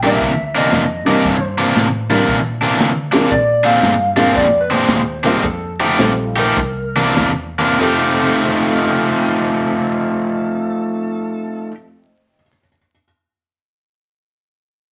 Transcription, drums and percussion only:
0.03 closed hi-hat
0.21 kick, closed hi-hat
0.56 closed hi-hat
0.72 snare, closed hi-hat
1.07 closed hi-hat
1.25 kick, closed hi-hat
1.59 closed hi-hat
1.76 snare, closed hi-hat
2.10 closed hi-hat
2.28 kick, closed hi-hat
2.62 closed hi-hat
2.80 snare, closed hi-hat
3.14 closed hi-hat
3.31 kick, closed hi-hat
3.66 closed hi-hat
3.83 snare, closed hi-hat
4.18 closed hi-hat
4.35 kick, closed hi-hat
4.71 closed hi-hat
4.88 snare, closed hi-hat
5.24 snare, closed hi-hat
5.42 kick, closed hi-hat
5.79 snare, closed hi-hat
5.99 snare, closed hi-hat
6.36 closed hi-hat
6.57 kick, closed hi-hat
6.96 closed hi-hat
7.16 kick, snare, closed hi-hat
7.58 closed hi-hat

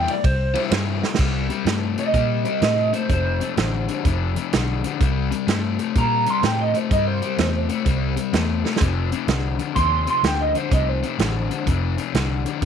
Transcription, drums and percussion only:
0.08 ride
0.24 kick, ride
0.55 ride
0.71 snare, ride
1.03 snare
1.14 snare
1.19 kick, crash
1.50 closed hi-hat
1.66 snare, closed hi-hat
1.98 closed hi-hat
2.14 kick, closed hi-hat
2.45 closed hi-hat
2.62 snare, closed hi-hat
2.93 closed hi-hat
3.10 kick, closed hi-hat
3.41 closed hi-hat
3.57 snare, closed hi-hat
3.88 closed hi-hat
4.05 kick, closed hi-hat
4.36 closed hi-hat
4.53 snare, closed hi-hat
4.84 closed hi-hat
5.01 kick, closed hi-hat
5.32 closed hi-hat
5.48 snare, closed hi-hat
5.79 closed hi-hat
5.95 kick, closed hi-hat
6.26 closed hi-hat
6.43 snare, closed hi-hat
6.75 closed hi-hat
6.91 kick, closed hi-hat
7.22 closed hi-hat
7.38 snare, closed hi-hat
7.69 closed hi-hat
7.86 kick, closed hi-hat
8.17 closed hi-hat
8.33 snare, closed hi-hat
8.65 snare
8.76 snare
8.81 kick, closed hi-hat
9.12 closed hi-hat
9.28 snare, closed hi-hat
9.59 closed hi-hat
9.76 kick, closed hi-hat
10.07 closed hi-hat
10.24 snare, closed hi-hat
10.55 closed hi-hat
10.71 kick, closed hi-hat
11.03 closed hi-hat
11.19 snare, closed hi-hat
11.51 closed hi-hat
11.67 kick, closed hi-hat
11.98 closed hi-hat
12.15 snare, closed hi-hat
12.46 closed hi-hat
12.62 closed hi-hat

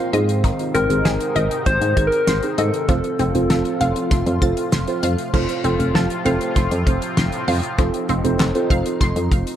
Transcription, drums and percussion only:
0.13 closed hi-hat
0.29 closed hi-hat
0.44 kick, closed hi-hat
0.59 closed hi-hat
0.75 closed hi-hat
0.90 closed hi-hat
1.05 snare, closed hi-hat
1.21 closed hi-hat
1.36 closed hi-hat
1.51 closed hi-hat
1.66 kick, closed hi-hat
1.82 closed hi-hat
1.97 kick, closed hi-hat
2.12 closed hi-hat
2.27 snare, closed hi-hat
2.43 closed hi-hat
2.58 closed hi-hat
2.74 closed hi-hat
2.89 kick, closed hi-hat
3.04 closed hi-hat
3.19 closed hi-hat
3.35 closed hi-hat
3.50 snare, closed hi-hat
3.65 closed hi-hat
3.81 closed hi-hat
3.96 closed hi-hat
4.11 kick, closed hi-hat
4.26 closed hi-hat
4.42 kick, closed hi-hat
4.57 closed hi-hat
4.72 snare, closed hi-hat
4.88 closed hi-hat
5.03 closed hi-hat
5.18 closed hi-hat
5.34 kick, crash
5.49 closed hi-hat
5.64 closed hi-hat
5.80 closed hi-hat
5.95 snare
6.10 closed hi-hat
6.26 closed hi-hat
6.41 closed hi-hat
6.56 kick, closed hi-hat
6.71 closed hi-hat
6.87 kick, closed hi-hat
7.02 closed hi-hat
7.17 snare
7.32 closed hi-hat
7.48 open hi-hat
7.63 closed hi-hat
7.78 kick, closed hi-hat
7.94 closed hi-hat
8.09 closed hi-hat
8.25 closed hi-hat
8.40 snare, clap
8.55 closed hi-hat
8.70 kick, closed hi-hat
8.86 closed hi-hat
9.01 kick, closed hi-hat
9.16 closed hi-hat
9.32 kick, closed hi-hat
9.47 closed hi-hat

